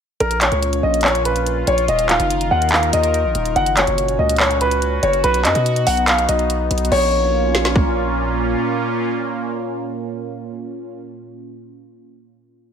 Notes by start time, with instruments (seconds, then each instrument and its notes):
0.20 808-style bass A#1, analog synth pad A#2 C#4 F4, grand piano A#4, closed hi-hat
0.31 closed hi-hat
0.41 grand piano C#5, clap, closed hi-hat
0.52 808-style bass C#2, closed hi-hat
0.62 closed hi-hat
0.73 closed hi-hat
0.83 808-style bass A#1, grand piano D#5
0.94 closed hi-hat
1.01 grand piano C#5, clap, closed hi-hat
1.08 closed hi-hat
1.15 closed hi-hat
1.25 grand piano B4, closed hi-hat
1.36 closed hi-hat
1.46 closed hi-hat
1.67 808-style bass A#1, grand piano C#5, closed hi-hat
1.78 closed hi-hat
1.88 808-style bass D#1, analog synth pad D#3 D#4 A#4, grand piano D#5, closed hi-hat
1.99 closed hi-hat
2.09 grand piano F5, clap, closed hi-hat
2.20 808-style bass F#1, closed hi-hat
2.30 closed hi-hat
2.41 closed hi-hat
2.51 808-style bass D#2, grand piano F#5
2.62 closed hi-hat
2.69 grand piano F5, clap, closed hi-hat
2.76 closed hi-hat
2.83 closed hi-hat
2.93 808-style bass D#2, grand piano D#5, closed hi-hat
3.03 closed hi-hat
3.14 closed hi-hat
3.25 808-style bass A#1
3.35 808-style bass D#1, closed hi-hat
3.45 closed hi-hat
3.56 808-style bass F#1, analog synth pad A#2 C#4 F#4, grand piano F#5, closed hi-hat
3.66 closed hi-hat
3.77 grand piano C#5, clap, closed hi-hat
3.87 808-style bass F#1, closed hi-hat
3.98 closed hi-hat
4.08 closed hi-hat
4.19 808-style bass C#2, grand piano D#5
4.29 closed hi-hat
4.36 grand piano C#5, clap, closed hi-hat
4.43 closed hi-hat
4.51 closed hi-hat
4.61 grand piano B4, closed hi-hat
4.71 closed hi-hat
4.82 closed hi-hat
5.03 808-style bass F#1, grand piano C#5, closed hi-hat
5.13 closed hi-hat
5.24 808-style bass B1, analog synth pad B3 D#4, grand piano B4, closed hi-hat
5.34 closed hi-hat
5.45 808-style bass F#2, grand piano D#5, clap, closed hi-hat
5.55 808-style bass B2, closed hi-hat
5.66 closed hi-hat
5.76 closed hi-hat
5.87 808-style bass B1, grand piano F#5, open hi-hat
5.97 closed hi-hat
6.08 grand piano F5, clap, closed hi-hat
6.18 closed hi-hat
6.29 808-style bass B1, grand piano D#5, closed hi-hat
6.39 closed hi-hat
6.50 closed hi-hat
6.71 808-style bass B1, closed hi-hat
6.78 closed hi-hat
6.85 closed hi-hat
6.92 808-style bass A#1, analog synth pad A#2 A#3 C#4 F4, grand piano C#5, crash
7.55 snare
7.65 snare
7.76 kick